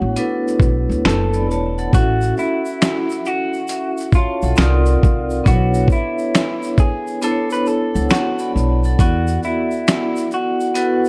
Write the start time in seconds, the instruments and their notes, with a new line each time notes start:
Already playing: vibraphone A3 B3 D4 E4 C#5, clean electric guitar F#4
0.01 upright bass A1
0.16 vibraphone B3 D4 E4 A4 B4, closed hi-hat, shaker
0.48 shaker
0.60 upright bass B1, kick, shaker
0.89 upright bass D2, shaker
1.05 upright bass F#1, clean electric guitar A4, finger snap, snare, closed hi-hat, shaker
1.33 vibraphone D5 B5, shaker
1.49 upright bass E1, vibraphone C#5 A5, shaker
1.78 vibraphone A4 F#5, shaker
1.93 upright bass A1, vibraphone C#4 E4 F#4 A4 E5, clean electric guitar F#4, kick, closed hi-hat, shaker
2.21 shaker
2.37 shaker
2.39 clean electric guitar E4, shaker
2.65 shaker
2.82 finger snap, snare, closed hi-hat, shaker
3.10 shaker
3.11 shaker
3.25 clean electric guitar F#4, shaker
3.54 shaker
3.68 vibraphone C#6, closed hi-hat, shaker
3.69 vibraphone E5, shaker
3.98 shaker
4.00 shaker
4.12 clean electric guitar F4, vibraphone C#5 A5, kick, shaker
4.42 upright bass B1, vibraphone A4 F#5, shaker
4.56 upright bass C2, vibraphone C4 D#4 F4 A#4 D5, finger snap, snare, shaker
4.62 closed hi-hat, shaker
4.86 shaker
5.03 upright bass C2, kick, shaker
5.30 shaker
5.44 upright bass B1, vibraphone B3 D4 E4 A4 B4, clean electric guitar F#4, kick, closed hi-hat, shaker
5.53 vibraphone C#5
5.74 shaker
5.88 kick, shaker
5.91 clean electric guitar E4, shaker
6.18 shaker
6.35 finger snap, snare, closed hi-hat, shaker
6.63 shaker
6.78 clean electric guitar G#4, kick, shaker
7.07 shaker
7.22 vibraphone B3 D4 E4 A4 C5, clean electric guitar A4, closed hi-hat, shaker
7.31 vibraphone C#5
7.50 clean electric guitar B4, shaker
7.53 shaker
7.66 clean electric guitar A4, shaker
7.94 upright bass C#2, vibraphone A4 F#5, shaker
8.10 clean electric guitar F#4, vibraphone C#5 A5, finger snap, snare, shaker
8.15 closed hi-hat, shaker
8.39 vibraphone D5 B5, shaker
8.56 upright bass B1, shaker
8.84 vibraphone A4 F#5, shaker
8.99 upright bass E2, vibraphone B3 E4 F#4 A4 D5, clean electric guitar F#4, kick, closed hi-hat, shaker
9.27 shaker
9.43 clean electric guitar E4, shaker
9.71 shaker
9.88 finger snap, snare, closed hi-hat, shaker
10.16 shaker
10.31 clean electric guitar F#4, shaker
10.60 shaker
10.74 vibraphone B3 E4 F#4 A4 B4, closed hi-hat, shaker
11.05 shaker